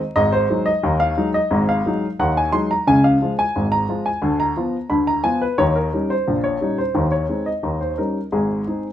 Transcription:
0.16 G#1 G#2 D#5
0.32 C5
0.50 F#3 G#3 D#4
0.66 D#5
0.83 D#2 D#3
1.00 F5
1.17 F#3 G#3 D#4
1.34 D#5
1.51 G#1 G#2
1.69 F5
1.86 F#3 G#3 D#4
2.19 D#2 D#3 F#5
2.37 G#5
2.52 F#3 G#3 D#4 C6
2.71 A#5
2.87 C#2 C#3 G#5
3.04 F5
3.22 F3 G#3 F4
3.39 G#5
3.55 G#1 G#2
3.72 A#5
3.89 F3 G#3 F4
4.06 G#5
4.22 D2 D3
4.40 A#5
4.57 F3 B3 F4
4.90 D2 D3 B5
5.07 A#5
5.24 F3 B3 F4 G#5
5.41 B4
5.58 D#2 D#3 C#5
5.76 A#4
5.93 G3 C#4 D#4
6.10 C5
6.27 A#1 A#2
6.44 C#5
6.61 G3 C#4 D#4
6.78 C5
6.95 D#2 D#3
7.12 C#5
7.29 G#3 C4 D#4
7.46 D#5
7.63 D#2 D#3
7.81 C5
7.98 G3 C#4 D#4 A#4
8.32 G#1 G#2 G#4
8.67 G#3 C4 D#4

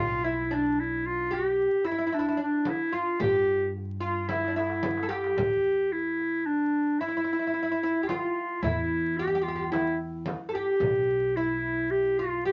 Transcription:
Already playing: B1 F4
0.24 E4
0.50 D4, darbuka ka
0.78 E4, darbuka ka
1.04 F4, darbuka ka
1.31 G4
1.59 darbuka ka
1.84 E4
1.92 E4
1.98 E4
2.07 E4
2.12 D4 E4
2.19 E4
2.28 E4
2.37 D4
2.43 D4
2.65 E4, darbuka tek, frame drum
2.92 F4
3.20 G2 G4, frame drum, darbuka dum
3.48 darbuka ka
3.76 darbuka ka
4.00 F4
4.29 E4, darbuka tek, frame drum
4.44 D4, darbuka ka
4.56 E4, darbuka tek
4.70 darbuka ka
4.83 darbuka tek, frame drum
4.97 darbuka ka
5.03 A4
5.09 G4, darbuka tek
5.24 darbuka ka
5.37 E2, darbuka dum, frame drum
5.92 E4, darbuka ka
6.18 darbuka ka
6.46 D4
7.00 E4
7.09 E4
7.17 E4
7.24 E4
7.33 E4
7.39 E4
7.47 E4
7.54 E4
7.63 E4
7.72 E4
7.83 E4
8.03 G4
8.07 F4, darbuka tek, frame drum
8.62 E2 E4, frame drum, darbuka dum
9.17 G4
9.28 G4
9.35 G4
9.42 F4 G4
9.48 G4
9.55 G4
9.71 E4, darbuka tek, frame drum
10.26 darbuka tek, frame drum
10.49 G4 A4
10.55 G4
10.80 B1, frame drum, darbuka dum
11.36 E4, darbuka ka
11.90 G4
12.19 F4
12.45 G4

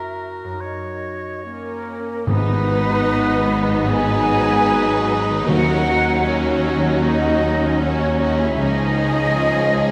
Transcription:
Already playing: F#2 C#4 E4 F#4 A#4 E5
0.44 F#2
0.49 C#4
0.53 D#4
0.57 A#4 C#5
0.62 D#5
1.45 A#3 C#4 A#4
2.25 G#1 G#2 F#3 B3 D#4 B4
2.48 D#3
2.67 B3
2.87 D#4
3.08 F#4
3.29 B4
3.49 D#5
3.71 F#5
3.89 G#4 B4 D#5 G#5
4.12 F#5
4.32 D#5
4.52 F#5
4.71 B4
4.90 F#4
5.10 B3
5.30 D#3
5.47 D#2 D#3 C#4 F#4 A#4 F#5
5.67 A#3
5.85 C#4
6.04 D#4
6.23 C#4 F#4 C#5
6.43 C#5
6.62 D#5
6.82 F#5
7.01 D#4 F#4 D#5
7.21 F#5
7.40 D#5
7.60 F#5
7.78 C#4 F#4 C#5
8.00 F#4
8.19 C#4 D#4 F#4 D#5
8.38 A#3 E4 G#4 E5
8.57 C#2 C#3 F3 D#4 G#4 D#5
8.76 G#3
8.96 C#4
9.14 D#4
9.34 F4
9.54 C#5
9.74 D#5

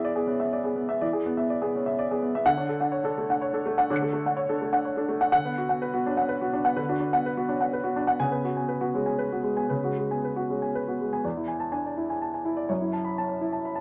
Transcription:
Already playing: E3 B3 G#4 D5 E5
0.05 D5
0.16 B3 G#4
0.27 B3 C#4
0.40 B3 E5
0.53 D5
0.64 B3 G#4
0.76 B3
0.88 B3 E5
1.01 E3 D5
1.13 G#4
1.26 B3
1.37 B3 E5
1.50 D5
1.62 B3 G#4
1.75 B3 C#4
1.86 B3 E5
1.99 D5
2.11 B3 G#4
2.22 B3
2.35 B3 E5
2.46 D3 F#5
2.57 D4 C#5
2.69 A4
2.81 D4 F#5
2.92 C#5
3.04 D4 A4
3.18 A3
3.30 D4 F#5
3.42 C#5
3.53 D4 A4
3.66 A3
3.78 D4 F#5
3.90 D3 C#5 D6 F#6
3.96 C#7
4.02 A3 A4
4.13 A3
4.26 D4 F#5
4.37 C#5
4.49 D4 A4
4.62 A3
4.73 D4 F#5
4.85 C#5
4.97 D4 A4
5.09 A3
5.21 D4 F#5
5.32 D3 F#5
5.45 B3 B4
5.58 F#4
5.69 B3 F#5
5.82 B4
5.94 B3 F#4
6.06 C#4 D4
6.17 B3 F#5
6.29 B4
6.42 B3 F#4
6.53 D4
6.65 B3 F#5
6.76 D3 B4
6.89 D4 F#4
7.00 D4
7.13 B3 F#5
7.26 B4
7.37 B3 F#4
7.49 C#4 D4
7.60 B3 F#5
7.73 B4
7.84 B3 F#4
7.96 D4
8.07 B3 F#5
8.20 C#3 G#5
8.32 B3 B4
8.45 F#4
8.57 B3 G#5
8.69 B4
8.81 B3 F#4
8.94 G#3 C#4
9.06 B3 G#5
9.19 B4
9.32 B3 F#4
9.43 G#3
9.57 B3 G#5
9.69 C#3 B4
9.83 G#3 F#4
9.98 G#3
10.11 B3 G#5
10.25 B4
10.36 B3 F#4
10.49 G#3 C#4
10.62 B3 G#5
10.75 B4
10.88 B3 F#4
11.01 G#3
11.13 B3 G#5
11.24 E2 D5
11.37 E4
11.48 G#5
11.60 A5
11.72 D4 G#5
11.86 D5
11.97 E4
12.10 G#5
12.22 A5
12.34 G#5
12.45 E4
12.57 D5
12.69 F#2 C#5
12.81 E4
12.93 A5
13.05 B5
13.18 C#4 A5
13.29 C#5
13.41 E4
13.53 A5
13.65 B5
13.75 A5

